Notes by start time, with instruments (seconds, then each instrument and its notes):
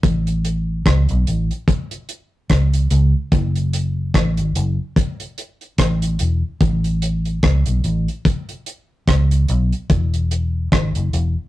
0.03 fingered electric bass A1, kick, closed hi-hat
0.27 closed hi-hat
0.45 closed hi-hat
0.86 fingered electric bass C#2, kick, cross-stick, closed hi-hat
1.09 fingered electric bass B1, closed hi-hat
1.27 fingered electric bass A1, closed hi-hat
1.51 closed hi-hat
1.68 kick, closed hi-hat
1.91 closed hi-hat
2.09 closed hi-hat
2.50 fingered electric bass C#2, kick, cross-stick, closed hi-hat
2.73 closed hi-hat
2.90 fingered electric bass C#2, closed hi-hat
3.32 fingered electric bass F#1, kick, closed hi-hat
3.56 closed hi-hat
3.73 closed hi-hat
4.14 fingered electric bass A1, kick, cross-stick, closed hi-hat
4.37 fingered electric bass G#1, closed hi-hat
4.55 fingered electric bass F#1, closed hi-hat
4.96 kick, closed hi-hat
5.20 closed hi-hat
5.38 closed hi-hat
5.61 closed hi-hat
5.78 fingered electric bass A1, kick, cross-stick, closed hi-hat
6.02 closed hi-hat
6.19 fingered electric bass E1, closed hi-hat
6.61 fingered electric bass A1, kick, closed hi-hat
6.84 closed hi-hat
7.02 closed hi-hat
7.25 closed hi-hat
7.43 fingered electric bass C#2, kick, cross-stick, closed hi-hat
7.66 fingered electric bass B1, closed hi-hat
7.84 fingered electric bass A1, closed hi-hat
8.08 closed hi-hat
8.25 kick, closed hi-hat
8.49 closed hi-hat
8.66 closed hi-hat
9.08 fingered electric bass C#2, kick, cross-stick, closed hi-hat
9.31 closed hi-hat
9.48 fingered electric bass B1, closed hi-hat
9.72 closed hi-hat
9.90 fingered electric bass E1, kick, closed hi-hat
10.14 closed hi-hat
10.31 closed hi-hat
10.72 fingered electric bass G#1, kick, cross-stick, closed hi-hat
10.95 fingered electric bass F#1, closed hi-hat
11.13 fingered electric bass E1, closed hi-hat